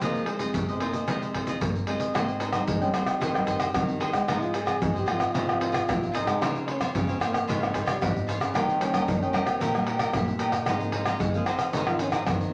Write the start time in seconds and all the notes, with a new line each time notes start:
0.01 F2 D#3 F3 G#3 A#3 C4 F4 G#4 C5 D#5, pandeiro, shaker, surdo
0.15 pandeiro, shaker
0.26 G#3 F4 G#4 C5 D#5, pandeiro
0.39 D#3 G#3 C4 F4 G#4 C5 D#5, pandeiro, shaker
0.54 C3, pandeiro, shaker, surdo
0.69 G#4 C5 D#5, pandeiro, shaker
0.80 D#3 G#3 A#3 C4 F4 G#4 C5 D#5, pandeiro
0.93 C5 D#5, pandeiro, shaker
0.97 G#4
1.07 F2 C3 D#3 G#3 C4 F4 G#4 C5 D#5, pandeiro, shaker, surdo
1.22 G#4 C5 D#5, pandeiro, shaker
1.35 F4 G#4 C5 D#5, pandeiro, surdo
1.47 D#3 G#3 C4 F4 G#4 C5 D#5, pandeiro, shaker
1.61 C3 A#3, pandeiro, shaker, surdo
1.75 pandeiro, shaker
1.87 D#3 G#3 C4 F4 G#4 C5 D#5, pandeiro
2.00 G#4 C5 D#5, pandeiro, shaker
2.14 G#2 G#3 A#3 G#4 C5 D#5 G5, pandeiro, tamborim, shaker, surdo
2.28 C4, pandeiro, shaker
2.40 D#4 G#4 C5 D#5 G5, pandeiro, shaker
2.53 G3 C4 D#4 G#4 C5 D#5 G5, pandeiro, tamborim, shaker
2.68 D#3 G#3, pandeiro, shaker, surdo
2.81 G3 C4 C#4 D#4 C5 D#5 G5, pandeiro, shaker
2.94 G3 C4 D#4 G#4 C5 D#5 G5, pandeiro, tamborim, shaker
3.06 C5 D#5 G5, pandeiro, tamborim, shaker
3.20 G#2 D#3 G#4 C5 D#5 G5, pandeiro, shaker, surdo
3.34 G3 C4 D#4 C5 D#5 G5, pandeiro, tamborim, shaker
3.46 G#4 C5 D#5 G5, pandeiro, shaker, surdo
3.59 G#4 C5 D#5 G5, pandeiro, tamborim, shaker
3.74 D#3 G3 C4 D#4, pandeiro, tamborim, shaker, surdo
3.88 pandeiro, shaker
4.00 G#4 C5 D#5 G5, pandeiro
4.13 G#3 C5 D#5 G5, pandeiro, tamborim, shaker
4.28 G#2 F3 G#3 C4 D#4 F4 G#4 C5 D#5, pandeiro, tamborim, shaker, surdo
4.42 F4, pandeiro, shaker
4.54 F4 G#4 C5 D#5, pandeiro, shaker
4.66 F3 C4 D#4 F4 G#4 C5 D#5, pandeiro, tamborim, shaker
4.82 G#2 G#3, pandeiro, shaker, surdo
4.93 G#4 C5 D#5, pandeiro, shaker
4.98 G4
5.06 F3 C4 D#4 F4 G#4 C5 D#5, pandeiro, tamborim
5.10 F4
5.19 G#4 C5 D#5, pandeiro, tamborim, shaker
5.34 G#2 C3 F4 G#4 C5 D#5, pandeiro, shaker, surdo
5.47 F3 C4 D#4 G#4 C5 D#5, pandeiro, tamborim, shaker
5.60 F4 G#4 C5 D#5, pandeiro
5.72 F4 G#4 C5 D#5, pandeiro, tamborim, shaker
5.88 G#2 C3 F3 C4 D#4, pandeiro, tamborim, shaker, surdo
6.03 pandeiro, shaker
6.12 F4 G#4 C5 D#5, pandeiro, shaker
6.16 D#4
6.26 G#3 G#4 C5 D#5, pandeiro, tamborim, shaker
6.41 C#3 F3 G#3 C4 F4 C5 C#5 F5, pandeiro, tamborim, shaker, surdo
6.55 pandeiro, shaker
6.67 C#4 F4 C5 C#5 F5, pandeiro
6.80 F3 G#3 C4 F4 C5 C#5 F5, pandeiro, tamborim, shaker
6.95 G#2 C#3 G#3, pandeiro, shaker, surdo
7.07 C4 C5 C#5 F5, pandeiro, shaker
7.20 F3 G#3 A#3 C4 F4 C5 C#5 F5, pandeiro, tamborim, shaker
7.32 C5 C#5 F5, pandeiro, tamborim, shaker
7.47 G#2 C#3 F4 C5 C#5 F5, pandeiro, shaker, surdo
7.61 F3 G#3 C4 C5 C#5 F5, pandeiro, tamborim, shaker
7.73 G#3 F4 C5 C#5 F5, pandeiro, shaker, surdo
7.86 G3 F4 C5 C#5 F5, pandeiro, tamborim, shaker
8.01 G#2 F3 G#3 C4, pandeiro, tamborim, shaker, surdo
8.16 pandeiro, shaker
8.27 F4 C5 C#5 F5, pandeiro, shaker
8.40 C#3 C5 C#5 F5, pandeiro, tamborim, shaker
8.54 D#3 G3 A#3 D#4 G4 A#4 D#5 G5, pandeiro, tamborim, shaker, surdo
8.68 C4, pandeiro, shaker
8.80 G3 A#3 C#4 D#4 G4 A#4 D#5 G5, pandeiro, shaker
8.94 G3 A#3 D#4 G4 A#4 D#5 G5, pandeiro, tamborim, shaker
9.07 A#2 D#3 G3 A#3 D#4, pandeiro, shaker, surdo
9.22 C#4 A#4 D#5 G5, pandeiro, shaker
9.33 G3 A#3 D#4 G4 A#4 D#5 G5, pandeiro, tamborim, shaker
9.46 C4 A#4 D#5 G5, pandeiro, tamborim, shaker
9.60 A#2 D#3 A#3 G4 A#4 D#5 G5, pandeiro, shaker, surdo
9.74 G3 A#3 D#4 A#4 D#5 G5, pandeiro, tamborim, shaker
9.86 G4 A#4 D#5 G5, pandeiro
9.99 G4 A#4 D#5 G5, pandeiro, tamborim, shaker
10.13 A#2 G3 A#3 D#4, pandeiro, tamborim, shaker, surdo
10.28 pandeiro, shaker
10.39 G4 A#4 D#5 G5, pandeiro, shaker
10.52 A#2 A#4 D#5 G5, pandeiro, tamborim, shaker
10.66 G#2 F3 G#3 C4 D#4 G#4 C5 F5, pandeiro, tamborim, shaker, surdo
10.80 A#3, pandeiro, shaker
10.92 G#3 D#4 G#4 C5 F5, pandeiro
11.06 F3 C4 D#4 G#4 C5 F5, pandeiro, tamborim, shaker
11.19 D#3 G#3, pandeiro, shaker, surdo
11.34 F3 A#3 C4 D#4 G#4 C5 F5, pandeiro, shaker
11.46 F3 C4 D#4 G#4 C5 F5, pandeiro, tamborim, shaker
11.59 G#4 C5 F5, pandeiro, tamborim, shaker
11.73 G#2 D#3 D#4 G#4 C5, pandeiro, shaker, surdo
11.77 F5
11.87 F3 C4 D#4 F4 G#4 C5 F5, pandeiro, tamborim, shaker
11.99 C#4 D#4 G#4 C5 F5, pandeiro, shaker
12.12 C4 D#4 G#4 C5 F5, pandeiro, tamborim, shaker
12.27 D#3 F3 C4 D#4, pandeiro, tamborim, shaker, surdo
12.41 pandeiro, shaker